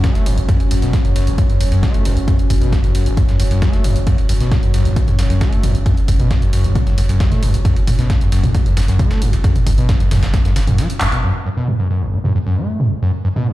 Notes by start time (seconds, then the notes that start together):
Already playing: F#3 C#4
0.04 A3, kick, snare, closed hi-hat, ride
0.15 snare, closed hi-hat
0.26 F#1 F#2, open hi-hat, ride
0.38 F#1, closed hi-hat
0.49 F#2, kick, closed hi-hat, ride
0.60 closed hi-hat, ride
0.71 F#1 F#2, open hi-hat, ride
0.82 F#1 B2, snare, closed hi-hat
0.93 F#2, kick, snare, closed hi-hat, ride
1.05 F#2, closed hi-hat
1.16 F#1 F#2, snare, open hi-hat, ride
1.27 F#1, closed hi-hat
1.38 C#3, kick, closed hi-hat, ride
1.50 F#2, closed hi-hat
1.61 F#1 F#2, open hi-hat, ride
1.72 F#1 F#2, closed hi-hat, ride
1.83 A3, kick, snare, closed hi-hat, ride
1.94 closed hi-hat, ride
2.05 F#1 F#2, open hi-hat, ride
2.17 F#1, closed hi-hat
2.28 F#2, kick, closed hi-hat, ride
2.39 closed hi-hat
2.50 F#1 F#2, kick, open hi-hat, ride
2.61 F#1 B2, closed hi-hat
2.72 F#2, kick, snare, closed hi-hat, ride
2.84 F#2, closed hi-hat
2.95 F#1 F#2, open hi-hat, ride
3.06 F#1, closed hi-hat
3.17 C#3, kick, closed hi-hat, ride
3.29 F#2, snare, closed hi-hat
3.40 F#1 F#2, open hi-hat, ride
3.51 F#1 F#2, closed hi-hat, ride
3.62 A3, kick, snare, closed hi-hat, ride
3.73 snare, closed hi-hat
3.84 F#1 F#2, open hi-hat, ride
3.96 F#1, closed hi-hat
4.07 F#2, kick, closed hi-hat, ride
4.18 closed hi-hat, ride
4.29 F#1 F#2, open hi-hat, ride
4.40 F#1 B2, snare, closed hi-hat
4.52 F#2, kick, snare, closed hi-hat, mid tom, ride
4.63 F#2, closed hi-hat
4.74 F#1 F#2, snare, open hi-hat, ride
4.85 F#1, closed hi-hat
4.96 C#3, kick, closed hi-hat, ride
5.08 F#2, closed hi-hat, mid tom
5.19 F#1 F#2, snare, open hi-hat, ride
5.30 F#1 F#2, closed hi-hat, ride
5.41 A3, kick, snare, closed hi-hat, ride
5.52 closed hi-hat, ride
5.63 F#1 F#2, mid tom, open hi-hat, ride
5.75 F#1, closed hi-hat
5.86 F#2, kick, closed hi-hat, ride
5.97 closed hi-hat
6.08 F#1 F#2, kick, open hi-hat, ride
6.20 F#1 B2, closed hi-hat, mid tom
6.31 F#2, kick, snare, closed hi-hat, ride
6.42 F#2, closed hi-hat
6.53 F#1 F#2, open hi-hat, ride
6.64 F#1, closed hi-hat
6.75 C#3, kick, closed hi-hat, mid tom, ride
6.87 F#2, snare, closed hi-hat
6.98 F#1 F#2, open hi-hat, ride
7.09 F#1 F#2, closed hi-hat, ride
7.20 A3, kick, snare, closed hi-hat, ride
7.32 snare, closed hi-hat, mid tom
7.43 F#1 F#2, open hi-hat, ride
7.54 F#1, closed hi-hat
7.65 F#2, kick, closed hi-hat, ride
7.76 closed hi-hat, ride
7.87 F#1 F#2, mid tom, open hi-hat, ride
7.99 F#1 B2, snare, closed hi-hat
8.10 F#2, kick, snare, closed hi-hat, ride
8.21 F#2, closed hi-hat
8.32 F#1 F#2, snare, open hi-hat, ride
8.44 F#1, closed hi-hat, mid tom
8.55 C#3, kick, closed hi-hat, ride
8.66 F#2, closed hi-hat
8.77 F#1 F#2, snare, open hi-hat, ride
8.88 F#1 F#2, snare, closed hi-hat
8.99 A3, kick, closed hi-hat, mid tom, ride
9.11 snare, closed hi-hat, ride
9.22 F#1 F#2, open hi-hat
9.33 F#1, closed hi-hat, ride
9.44 F#2, kick, closed hi-hat, ride
9.56 closed hi-hat, mid tom
9.67 F#1 F#2, kick, open hi-hat, ride
9.78 F#1 B2, closed hi-hat
9.89 F#2, kick, snare, closed hi-hat, ride
10.00 F#2, closed hi-hat
10.11 F#1 F#2, snare, mid tom, open hi-hat, ride
10.23 F#1, snare, closed hi-hat, ride
10.34 C#3, kick, snare, closed hi-hat, ride
10.45 F#2, snare, closed hi-hat
10.56 F#1 C#3, snare, open hi-hat, ride
10.67 F#1 F#2, closed hi-hat, mid tom
10.78 F#3, snare, closed hi-hat, ride
10.90 closed hi-hat
11.01 F#1 F#2, clap, open hi-hat, ride
11.12 F#1 B2, closed hi-hat
11.23 F#2
11.46 F#2
11.57 B2
11.68 F#2, mid tom
11.79 F#2
11.90 F#2
12.02 F#1
12.13 C#3
12.24 F#2, mid tom
12.35 F#2
12.47 F#2
12.58 A3
12.80 F#2, mid tom
12.91 F#1
13.02 F#2
13.25 F#2
13.36 B2, mid tom
13.47 F#2